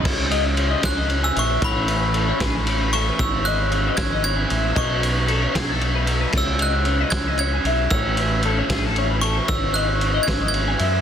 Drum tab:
CC |x-----|------|------|------|
RD |-xxxxx|xxxxxx|xxxxxx|xxxxxx|
SD |---o--|---o--|---o--|---o--|
BD |o--o--|o--o--|o--o--|o--o--|

CC |x-----|------|------|
RD |-xxxxx|xxxxxx|xxxxxx|
SD |---o--|---o--|---o--|
BD |o--o--|o--o--|o--o--|